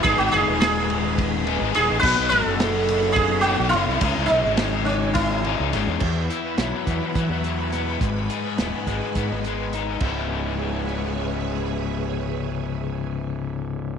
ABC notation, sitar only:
X:1
M:7/8
L:1/16
Q:1/4=105
K:C#m
V:1 name="Sitar"
G F G2 G4 z4 G2 | B2 A6 G2 F2 E2- | E2 D4 C2 E4 z2 | z12 z2 |
z12 z2 | z12 z2 | z12 z2 |]